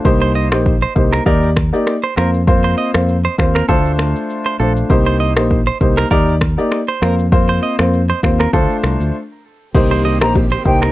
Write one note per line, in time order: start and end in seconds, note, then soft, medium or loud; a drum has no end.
0.05 0.52 C2 loud
0.05 0.48 A#3 medium
0.05 0.48 D#4 medium
0.05 0.48 G4 medium
0.05 0.48 C5 loud
0.05 kick loud
0.05 shaker medium
0.22 0.32 C5 medium
0.22 shaker medium
0.35 0.48 D#5 medium
0.35 shaker medium
0.52 0.84 A#1 medium
0.52 0.72 A#3 medium
0.52 0.72 D#4 medium
0.52 0.73 G4 medium
0.52 0.73 C5 medium
0.52 finger snap medium
0.52 cross-stick loud
0.52 shaker medium
0.66 kick medium
0.66 shaker medium
0.82 0.93 C5 medium
0.82 shaker medium
0.95 1.18 C2 medium
0.95 1.18 A#3 medium
0.95 1.18 D#4 medium
0.95 1.18 G4 medium
0.95 1.18 C5 medium
0.95 kick medium
0.95 shaker medium
1.13 1.23 A#4 medium
1.13 finger snap medium
1.13 cross-stick medium
1.13 shaker medium
1.26 1.71 D#2 loud
1.26 1.48 A#3 medium
1.26 1.48 D#4 medium
1.26 1.48 G4 medium
1.26 1.49 A#4 medium
1.26 1.49 D5 loud
1.26 kick medium
1.26 shaker medium
1.43 shaker medium
1.56 finger snap medium
1.56 kick medium
1.56 cross-stick medium
1.56 shaker medium
1.73 1.93 A#3 medium
1.73 1.94 D#4 medium
1.73 1.94 G4 medium
1.73 1.94 D5 medium
1.73 shaker medium
1.87 finger snap medium
1.87 cross-stick medium
1.87 shaker medium
2.03 2.14 C5 medium
2.03 shaker soft
2.17 2.74 F2 medium
2.17 2.39 A#3 medium
2.17 2.39 C4 medium
2.17 2.39 F4 medium
2.17 2.30 A#4 medium
2.17 2.40 C5 medium
2.17 finger snap medium
2.17 cross-stick medium
2.17 shaker soft
2.34 shaker medium
2.47 2.90 A#3 medium
2.47 2.90 C4 medium
2.47 2.91 F4 medium
2.47 2.91 C5 loud
2.47 kick loud
2.47 shaker medium
2.64 2.74 C5 medium
2.64 shaker medium
2.78 2.90 D#5 medium
2.78 shaker soft
2.94 3.27 F2 medium
2.94 3.15 A#3 medium
2.94 3.15 C4 medium
2.94 3.15 F4 medium
2.94 3.15 C5 medium
2.94 finger snap medium
2.94 cross-stick loud
2.94 shaker medium
3.09 shaker medium
3.25 3.35 C5 medium
3.25 shaker medium
3.38 3.61 D#2 medium
3.38 3.60 A#3 medium
3.38 3.61 C4 medium
3.38 3.61 F4 medium
3.38 3.61 C5 medium
3.38 finger snap medium
3.38 kick medium
3.38 cross-stick medium
3.38 shaker medium
3.55 3.65 A#4 medium
3.55 finger snap medium
3.55 cross-stick medium
3.55 shaker medium
3.68 4.13 D2 loud
3.68 4.53 A3 medium
3.68 4.53 D4 medium
3.68 4.53 F4 medium
3.68 3.91 A4 medium
3.68 4.53 C5 loud
3.68 kick medium
3.68 shaker medium
3.86 shaker medium
3.99 finger snap medium
3.99 cross-stick medium
3.99 shaker medium
4.16 shaker medium
4.30 shaker medium
4.46 4.56 C5 medium
4.46 shaker medium
4.60 4.82 A#1 medium
4.60 4.88 A3 medium
4.60 4.88 D4 medium
4.60 4.88 F4 medium
4.60 4.72 A4 medium
4.60 4.88 C5 medium
4.60 shaker soft
4.77 shaker medium
4.90 5.37 C2 loud
4.90 5.33 A#3 medium
4.90 5.33 D#4 medium
4.90 5.33 G4 medium
4.90 5.33 C5 loud
4.90 kick loud
4.90 shaker medium
5.06 5.17 C5 medium
5.06 shaker medium
5.20 5.33 D#5 medium
5.20 shaker medium
5.37 5.69 A#1 medium
5.37 5.57 A#3 medium
5.37 5.57 D#4 medium
5.37 5.57 G4 medium
5.37 5.57 C5 medium
5.37 finger snap medium
5.37 cross-stick loud
5.37 shaker medium
5.51 kick medium
5.51 shaker medium
5.67 5.77 C5 medium
5.67 shaker medium
5.81 6.03 C2 medium
5.81 6.03 A#3 medium
5.81 6.03 D#4 medium
5.81 6.03 G4 medium
5.81 6.03 C5 medium
5.81 kick medium
5.81 shaker medium
5.97 6.08 A#4 medium
5.97 finger snap medium
5.97 cross-stick medium
5.97 shaker medium
6.11 6.55 D#2 loud
6.11 6.33 A#3 medium
6.11 6.33 D#4 medium
6.11 6.33 G4 medium
6.11 6.34 A#4 medium
6.11 6.34 D5 loud
6.11 kick medium
6.11 shaker medium
6.28 shaker medium
6.41 finger snap medium
6.41 kick medium
6.41 cross-stick loud
6.41 shaker medium
6.58 6.78 A#3 medium
6.58 6.79 D#4 medium
6.58 6.79 G4 medium
6.58 6.79 D5 medium
6.58 shaker medium
6.72 finger snap medium
6.72 cross-stick medium
6.72 shaker medium
6.88 7.02 C5 medium
6.88 shaker medium
7.02 7.59 F2 medium
7.02 7.24 A#3 medium
7.02 7.24 C4 medium
7.02 7.24 F4 medium
7.02 7.15 A#4 medium
7.02 7.24 C5 medium
7.02 finger snap medium
7.02 cross-stick medium
7.02 shaker soft
7.19 shaker medium
7.32 7.75 A#3 medium
7.32 7.75 C4 medium
7.32 7.75 F4 medium
7.32 7.75 C5 loud
7.32 kick loud
7.32 shaker medium
7.49 7.59 C5 medium
7.49 shaker medium
7.63 7.75 D#5 medium
7.63 shaker medium
7.79 8.11 F2 medium
7.79 7.99 A#3 medium
7.79 8.00 C4 medium
7.79 8.00 F4 medium
7.79 8.00 C5 medium
7.79 finger snap medium
7.79 cross-stick loud
7.79 shaker medium
7.93 shaker medium
8.09 8.20 C5 medium
8.09 shaker soft
8.23 8.45 D#2 medium
8.23 8.45 A#3 medium
8.23 8.46 C4 medium
8.23 8.46 F4 medium
8.23 8.46 C5 medium
8.23 finger snap medium
8.23 kick medium
8.23 cross-stick medium
8.23 shaker medium
8.40 8.50 A#4 medium
8.40 finger snap medium
8.40 cross-stick medium
8.40 shaker medium
8.53 8.66 D2 loud
8.53 9.14 A3 medium
8.53 9.14 D4 medium
8.53 9.14 F4 medium
8.53 8.76 A4 medium
8.53 9.14 C5 loud
8.53 kick medium
8.53 shaker medium
8.70 shaker medium
8.84 8.96 C2 medium
8.84 finger snap medium
8.84 cross-stick medium
8.84 shaker medium
9.00 9.10 D2 medium
9.00 shaker medium
9.74 10.22 C2 loud
9.74 10.92 D#3 medium
9.74 10.92 A#3 medium
9.74 10.18 A#3 medium
9.74 10.92 C4 medium
9.74 10.18 D#4 medium
9.74 10.92 G4 medium
9.74 10.18 G4 medium
9.74 10.18 C5 loud
9.74 kick loud
9.74 crash medium
9.74 low conga medium
9.74 shaker medium
9.91 10.02 C5 medium
9.91 low bongo medium
9.91 shaker medium
10.04 10.18 D#5 medium
10.04 high bongo soft
10.04 low bongo soft
10.04 shaker medium
10.21 10.54 A#1 medium
10.21 10.42 A#3 medium
10.21 10.42 D#4 medium
10.21 10.42 G4 medium
10.21 10.42 C5 medium
10.21 10.34 A#5 medium
10.21 finger snap medium
10.21 cross-stick loud
10.21 low bongo medium
10.21 shaker medium
10.35 kick medium
10.35 high bongo medium
10.35 shaker medium
10.52 10.62 C5 medium
10.52 shaker medium
10.65 10.88 C2 medium
10.65 10.88 A#3 medium
10.65 10.88 D#4 medium
10.65 10.88 G4 medium
10.65 10.88 C5 medium
10.65 10.80 G5 medium
10.65 kick medium
10.65 shaker medium
10.82 10.92 A#4 medium
10.82 finger snap medium
10.82 cross-stick medium
10.82 shaker medium